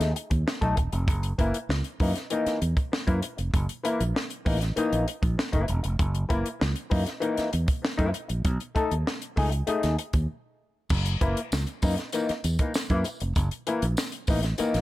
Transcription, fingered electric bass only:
0.00 0.12 D#2 medium
0.31 0.43 D#2 medium
0.62 0.74 B1 medium
0.78 0.90 E1 medium
0.93 1.08 F1 medium
1.08 1.32 F#1 loud
1.39 1.51 F#1 medium
1.69 1.81 C#2 medium
2.00 2.12 F#2 medium
2.46 muted fingered electric bass stroke soft
2.62 2.74 E2 medium
3.08 3.20 F#2 loud
3.39 3.50 F1 medium
3.54 3.66 F#1 loud
4.01 4.12 A#1 medium
4.46 4.70 A1 medium
4.77 muted fingered electric bass stroke soft
4.93 5.04 A#1 medium
5.23 5.35 A#1 medium
5.54 5.65 F#1 medium
5.69 5.81 E1 medium
5.85 5.96 F1 medium
6.00 6.23 F#1 loud
6.30 6.42 F#1 medium
6.62 6.73 C#2 medium
6.92 7.04 F#2 medium
7.38 muted fingered electric bass stroke soft
7.54 7.65 E2 medium
7.99 8.11 F#2 medium
8.30 8.42 A#1 medium
8.45 8.57 B1 loud
8.92 9.03 D#2 medium
9.38 9.61 C#2 medium
9.68 muted fingered electric bass stroke soft
9.84 9.96 D#2 medium
10.14 10.26 D#2 medium
10.91 11.15 F#1 loud
11.22 11.34 F#1 medium
11.53 11.64 C#2 loud
11.83 11.95 F#2 medium
12.30 muted fingered electric bass stroke soft
12.44 12.56 E2 medium
12.90 13.02 F#2 medium
13.21 13.33 F1 medium
13.36 13.48 F#1 loud
13.82 13.94 A#1 medium
14.28 14.52 A1 medium
14.60 muted fingered electric bass stroke soft
14.75 14.81 A#1 medium

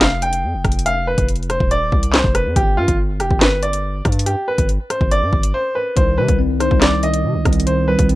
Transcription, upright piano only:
0.01 0.20 F5 medium
0.22 0.82 G5 medium
0.86 1.05 F5 medium
1.07 1.27 B4 medium
1.50 1.69 C5 medium
1.71 2.11 D5 medium
2.13 2.33 C5 medium
2.35 2.54 B4 medium
2.56 2.75 G4 medium
2.77 2.97 F4 medium
3.20 3.39 G4 medium
3.41 3.60 B4 medium
3.63 4.23 D5 medium
4.26 4.46 G4 medium
4.48 4.67 B4 medium
4.90 5.09 C5 medium
5.12 5.51 D5 medium
5.54 5.73 C5 medium
5.75 5.94 B4 medium
5.97 6.16 C5 medium
6.18 6.37 B4 medium
6.60 6.80 C5 medium
6.82 7.01 D5 medium
7.03 7.63 D#5 medium
7.67 7.86 C5 medium
7.88 8.07 B4 medium

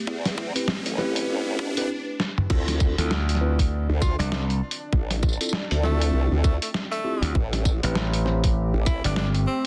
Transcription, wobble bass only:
0.07 0.53 E2 loud
0.86 1.27 A1 medium
1.29 1.87 G1 loud
2.50 2.96 D2 medium
3.89 4.17 D2 loud
4.93 5.38 A1 medium
5.71 6.12 D2 loud
6.13 6.29 C2 loud
6.31 6.59 D2 medium
7.35 7.81 A1 medium
8.74 9.01 A1 loud

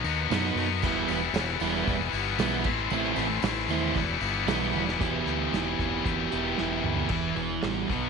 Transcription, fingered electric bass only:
0.04 0.27 D#2 medium
0.31 0.54 F#2 medium
0.55 0.85 F#2 medium
0.83 1.06 E1 medium
1.09 1.32 E1 medium
1.33 1.57 E1 medium
1.60 1.83 E1 medium
1.87 2.10 E1 loud
2.13 2.36 G1 medium
2.38 2.65 B1 medium
2.65 2.88 A1 medium
2.91 3.14 A1 loud
3.17 3.40 A1 medium
3.42 3.66 A1 loud
3.68 3.91 D#2 medium
3.96 4.19 E1 loud
4.21 4.44 G1 medium
4.48 4.71 B1 medium
4.74 5.00 E1 medium
5.01 5.21 E1 medium
5.26 5.47 D2 medium
5.52 5.73 E1 medium
5.79 6.00 E1 medium
6.06 6.26 E1 medium
6.33 6.53 E1 medium
6.59 6.79 E1 medium
6.84 7.05 D2 medium
7.09 7.31 E1 medium
7.35 7.57 E1 medium
7.63 7.84 A1 medium
7.89 8.10 B1 medium

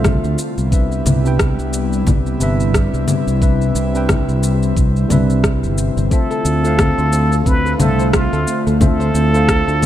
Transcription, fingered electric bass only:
0.00 0.17 C2 medium
0.24 0.35 D2 medium
0.58 1.01 C2 medium
1.06 1.52 C2 medium
1.59 2.02 C2 medium
2.07 2.34 C2 medium
2.40 2.87 G1 medium
2.93 3.05 C2 medium
3.27 3.70 C2 medium
3.75 4.22 C2 loud
4.29 4.72 C2 loud
4.77 5.04 C2 medium
5.10 5.65 C2 medium
5.63 5.88 G1 medium
5.97 6.08 G1 medium
6.45 6.91 D2 medium
6.98 7.41 D2 loud
7.46 7.74 D2 medium
7.80 8.26 C2 medium
8.33 8.44 D2 medium
8.67 9.10 D2 medium
9.14 9.61 D2 medium
9.68 9.86 D2 medium

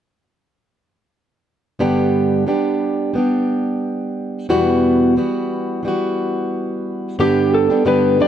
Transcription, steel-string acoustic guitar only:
1.79 2.47 G2 medium
1.79 2.47 D3 medium
1.79 2.46 G3 medium
1.79 2.47 B3 medium
1.79 2.47 D4 medium
1.79 2.48 G4 medium
2.47 3.13 G3 soft
2.47 3.15 B3 medium
2.47 3.15 D4 medium
2.47 3.18 G4 medium
3.14 4.49 G3 soft
3.14 4.50 B3 medium
3.14 4.50 D4 medium
3.18 4.50 G4 medium
4.49 5.17 E2 medium
4.49 5.17 B2 medium
4.49 5.15 E3 medium
4.49 5.17 G3 medium
4.49 5.17 B3 medium
4.49 5.17 F#4 medium
5.16 5.82 E3 soft
5.16 5.84 G3 medium
5.16 5.85 B3 medium
5.16 5.85 F#4 medium
5.83 7.18 E3 soft
5.83 7.19 G3 medium
5.83 7.20 B3 medium
5.88 7.20 F#4 medium
7.19 7.70 G2 medium
7.19 7.70 D3 medium
7.19 7.70 G3 medium
7.19 7.70 B3 medium
7.19 7.69 D4 medium
7.19 7.69 G4 medium
7.70 7.85 G3 soft
7.70 7.85 B3 soft
7.70 7.85 D4 soft
7.70 7.85 G4 soft
7.85 8.19 G2 medium
7.85 8.20 D3 medium
7.85 8.18 G3 medium
7.85 8.19 B3 medium
7.85 8.19 D4 medium
7.85 8.20 G4 medium
8.19 8.28 G3 soft
8.19 8.28 B3 medium
8.19 8.28 D4 medium
8.19 8.28 G4 medium

